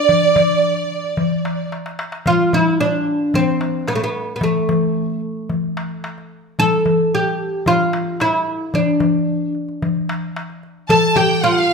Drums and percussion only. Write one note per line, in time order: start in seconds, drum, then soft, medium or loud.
0.09 darbuka dum medium
0.23 darbuka ka soft
0.36 darbuka dum medium
0.77 darbuka ka soft
0.90 darbuka ka soft
1.04 darbuka ka soft
1.17 darbuka dum medium
1.31 darbuka ka soft
1.45 darbuka tek medium
1.72 darbuka tek medium
1.86 darbuka ka medium
1.99 darbuka tek medium
2.12 darbuka ka medium
2.26 darbuka dum medium
2.53 darbuka dum medium
3.34 darbuka dum medium
3.61 darbuka tek medium
3.88 darbuka tek medium
4.00 darbuka ka soft
4.41 darbuka dum medium
4.69 darbuka dum medium
5.50 darbuka dum medium
5.77 darbuka tek medium
6.04 darbuka tek medium
6.18 darbuka ka soft
6.59 darbuka dum medium
6.86 darbuka dum medium
7.66 darbuka dum medium
7.93 darbuka tek medium
8.20 darbuka tek medium
8.34 darbuka ka soft
8.74 darbuka dum medium
9.00 darbuka dum medium
9.55 darbuka ka soft
9.69 darbuka ka soft
9.82 darbuka dum medium
9.95 darbuka ka soft
10.09 darbuka tek medium
10.36 darbuka tek medium
10.50 darbuka ka soft
10.63 darbuka ka soft
10.89 darbuka dum medium
11.16 darbuka dum medium